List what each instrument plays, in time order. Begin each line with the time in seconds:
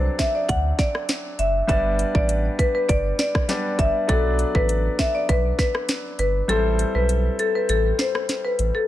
Already playing: grand piano F#3 C4 D4 A4 D5
0.19 marimba E5, kick, snare, closed hi-hat
0.35 marimba D5
0.49 sub bass D2, marimba F#5, kick, closed hi-hat
0.79 marimba D5, kick, snare, closed hi-hat
0.95 cross-stick
1.09 snare, closed hi-hat
1.39 sub bass F#1, marimba E5, closed hi-hat
1.67 sub bass G1, grand piano G3 B3 D4 B4 D5, marimba E5, kick, closed hi-hat
1.99 closed hi-hat
2.15 sub bass A1, marimba D5, kick
2.29 closed hi-hat
2.59 marimba B4, kick, closed hi-hat
2.75 marimba B4
2.89 sub bass G1, marimba D5, kick, closed hi-hat
3.19 marimba D5, snare, closed hi-hat
3.35 kick, cross-stick
3.48 grand piano G3 B3 D4 B4 D5, snare, closed hi-hat
3.79 sub bass G1, marimba E5, kick, closed hi-hat
4.08 sub bass B1, grand piano F#3 B3 D4 B4 D5, marimba A4, kick, closed hi-hat
4.39 closed hi-hat
4.55 sub bass A1, marimba B4, kick
4.69 closed hi-hat
4.99 marimba E5, kick, snare, closed hi-hat
5.15 marimba D5
5.29 sub bass B1, marimba B4, kick, closed hi-hat
5.59 marimba B4, kick, snare, closed hi-hat
5.75 cross-stick
5.89 snare, closed hi-hat
6.19 sub bass G1, marimba B4, closed hi-hat
6.48 sub bass A1, grand piano G3 C4 E4 A4 C5, marimba A4, closed hi-hat
6.79 closed hi-hat
6.95 sub bass B1, marimba B4
7.09 closed hi-hat
7.39 marimba A4, closed hi-hat
7.55 marimba B4
7.69 sub bass A1, marimba A4, closed hi-hat
7.99 marimba C5, snare, closed hi-hat
8.15 cross-stick
8.29 snare, closed hi-hat
8.45 marimba B4
8.59 sub bass A1, closed hi-hat
8.75 marimba A4